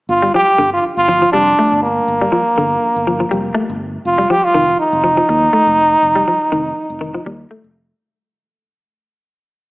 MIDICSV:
0, 0, Header, 1, 5, 480
1, 0, Start_track
1, 0, Key_signature, -2, "minor"
1, 0, Tempo, 493827
1, 91, Time_signature, 4, 2, 24, 8
1, 9433, End_track
2, 0, Start_track
2, 0, Title_t, "Trombone"
2, 0, Program_c, 0, 57
2, 93, Note_on_c, 0, 65, 86
2, 315, Note_off_c, 0, 65, 0
2, 346, Note_on_c, 0, 67, 94
2, 683, Note_off_c, 0, 67, 0
2, 714, Note_on_c, 0, 65, 78
2, 819, Note_off_c, 0, 65, 0
2, 944, Note_on_c, 0, 65, 96
2, 1268, Note_off_c, 0, 65, 0
2, 1285, Note_on_c, 0, 62, 99
2, 1734, Note_off_c, 0, 62, 0
2, 1777, Note_on_c, 0, 58, 74
2, 3658, Note_off_c, 0, 58, 0
2, 3950, Note_on_c, 0, 65, 86
2, 4184, Note_on_c, 0, 67, 95
2, 4198, Note_off_c, 0, 65, 0
2, 4317, Note_on_c, 0, 65, 97
2, 4332, Note_off_c, 0, 67, 0
2, 4658, Note_off_c, 0, 65, 0
2, 4664, Note_on_c, 0, 63, 89
2, 7260, Note_off_c, 0, 63, 0
2, 9433, End_track
3, 0, Start_track
3, 0, Title_t, "Clean electric guitar"
3, 0, Program_c, 1, 27
3, 218, Note_on_c, 1, 55, 69
3, 302, Note_off_c, 1, 55, 0
3, 334, Note_on_c, 1, 53, 63
3, 513, Note_off_c, 1, 53, 0
3, 568, Note_on_c, 1, 50, 79
3, 749, Note_off_c, 1, 50, 0
3, 1053, Note_on_c, 1, 53, 78
3, 1150, Note_off_c, 1, 53, 0
3, 1186, Note_on_c, 1, 53, 63
3, 1267, Note_off_c, 1, 53, 0
3, 1295, Note_on_c, 1, 55, 72
3, 1474, Note_off_c, 1, 55, 0
3, 1543, Note_on_c, 1, 57, 71
3, 1719, Note_off_c, 1, 57, 0
3, 2152, Note_on_c, 1, 55, 69
3, 2232, Note_off_c, 1, 55, 0
3, 2256, Note_on_c, 1, 53, 73
3, 2435, Note_off_c, 1, 53, 0
3, 2504, Note_on_c, 1, 50, 73
3, 2680, Note_off_c, 1, 50, 0
3, 2986, Note_on_c, 1, 53, 73
3, 3079, Note_off_c, 1, 53, 0
3, 3111, Note_on_c, 1, 53, 62
3, 3191, Note_off_c, 1, 53, 0
3, 3218, Note_on_c, 1, 55, 76
3, 3397, Note_off_c, 1, 55, 0
3, 3446, Note_on_c, 1, 57, 76
3, 3630, Note_off_c, 1, 57, 0
3, 4065, Note_on_c, 1, 55, 67
3, 4148, Note_off_c, 1, 55, 0
3, 4180, Note_on_c, 1, 53, 72
3, 4359, Note_off_c, 1, 53, 0
3, 4417, Note_on_c, 1, 51, 78
3, 4597, Note_off_c, 1, 51, 0
3, 4895, Note_on_c, 1, 53, 81
3, 4992, Note_off_c, 1, 53, 0
3, 5028, Note_on_c, 1, 53, 70
3, 5110, Note_off_c, 1, 53, 0
3, 5376, Note_on_c, 1, 57, 70
3, 5556, Note_off_c, 1, 57, 0
3, 5982, Note_on_c, 1, 55, 71
3, 6066, Note_off_c, 1, 55, 0
3, 6101, Note_on_c, 1, 53, 71
3, 6280, Note_off_c, 1, 53, 0
3, 6337, Note_on_c, 1, 51, 79
3, 6517, Note_off_c, 1, 51, 0
3, 6813, Note_on_c, 1, 51, 79
3, 6911, Note_off_c, 1, 51, 0
3, 6944, Note_on_c, 1, 53, 65
3, 7027, Note_off_c, 1, 53, 0
3, 7060, Note_on_c, 1, 55, 68
3, 7238, Note_off_c, 1, 55, 0
3, 7297, Note_on_c, 1, 57, 73
3, 7476, Note_off_c, 1, 57, 0
3, 9433, End_track
4, 0, Start_track
4, 0, Title_t, "Fingered electric bass"
4, 0, Program_c, 2, 33
4, 85, Note_on_c, 2, 31, 87
4, 272, Note_off_c, 2, 31, 0
4, 574, Note_on_c, 2, 31, 88
4, 757, Note_off_c, 2, 31, 0
4, 944, Note_on_c, 2, 31, 76
4, 1212, Note_off_c, 2, 31, 0
4, 1303, Note_on_c, 2, 29, 97
4, 1483, Note_off_c, 2, 29, 0
4, 1668, Note_on_c, 2, 31, 72
4, 1935, Note_off_c, 2, 31, 0
4, 2024, Note_on_c, 2, 31, 87
4, 2204, Note_off_c, 2, 31, 0
4, 2513, Note_on_c, 2, 31, 83
4, 2690, Note_off_c, 2, 31, 0
4, 2880, Note_on_c, 2, 31, 90
4, 3143, Note_off_c, 2, 31, 0
4, 3228, Note_on_c, 2, 29, 82
4, 3407, Note_off_c, 2, 29, 0
4, 3592, Note_on_c, 2, 31, 81
4, 3858, Note_off_c, 2, 31, 0
4, 3938, Note_on_c, 2, 29, 90
4, 4121, Note_off_c, 2, 29, 0
4, 4420, Note_on_c, 2, 29, 90
4, 4602, Note_off_c, 2, 29, 0
4, 4790, Note_on_c, 2, 29, 90
4, 5057, Note_off_c, 2, 29, 0
4, 5142, Note_on_c, 2, 39, 93
4, 5324, Note_off_c, 2, 39, 0
4, 5513, Note_on_c, 2, 29, 80
4, 5779, Note_off_c, 2, 29, 0
4, 5858, Note_on_c, 2, 29, 82
4, 6041, Note_off_c, 2, 29, 0
4, 6341, Note_on_c, 2, 29, 88
4, 6523, Note_off_c, 2, 29, 0
4, 6706, Note_on_c, 2, 29, 78
4, 6974, Note_off_c, 2, 29, 0
4, 7056, Note_on_c, 2, 39, 86
4, 7240, Note_off_c, 2, 39, 0
4, 7428, Note_on_c, 2, 29, 73
4, 7695, Note_off_c, 2, 29, 0
4, 9433, End_track
5, 0, Start_track
5, 0, Title_t, "Muted clean electric guitar strokes"
5, 5141, Note_on_c, 9, 29, 68
5, 5239, Note_off_c, 9, 29, 0
5, 9433, End_track
0, 0, End_of_file